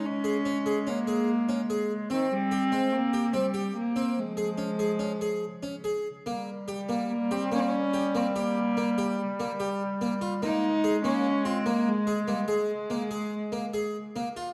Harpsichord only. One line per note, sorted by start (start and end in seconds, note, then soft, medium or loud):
0.24 0.35 G#4 medium
0.45 0.56 C#4 medium
0.66 0.77 G#4 medium
0.87 0.97 C#4 medium
1.07 1.28 G#4 medium
1.49 1.59 C#4 medium
1.70 1.91 G#4 medium
2.10 2.31 C4 medium
2.51 2.62 G4 medium
2.72 2.93 C4 medium
3.13 3.24 G4 medium
3.33 3.44 C4 medium
3.54 3.75 G4 medium
3.96 4.17 C4 medium
4.37 4.48 G#4 medium
4.58 4.68 C#4 medium
4.79 4.90 G#4 medium
4.99 5.10 C#4 medium
5.21 5.43 G#4 medium
5.63 5.74 C#4 medium
5.84 6.06 G#4 medium
6.26 6.48 A#3 medium
6.68 6.79 G4 medium
6.89 7.11 A#3 medium
7.31 7.42 G4 medium
7.52 7.73 A#3 medium
7.94 8.04 G4 medium
8.15 8.25 A#3 medium
8.36 8.57 G4 medium
8.77 8.88 A#3 medium
8.98 9.19 G4 medium
9.40 9.50 A#3 medium
9.60 9.81 G4 medium
10.01 10.12 A#3 medium
10.21 10.32 F4 medium
10.42 10.64 A#3 medium
10.84 10.95 G#4 medium
11.04 11.25 A#3 medium
11.45 11.56 F4 medium
11.66 11.87 A#3 medium
12.07 12.18 G#4 medium
12.28 12.38 A#3 medium
12.48 12.69 G#4 medium
12.90 13.01 A#3 medium
13.11 13.32 G#4 medium
13.52 13.63 A#3 medium
13.74 13.95 G#4 medium
14.16 14.27 A#3 medium
14.37 14.47 F4 medium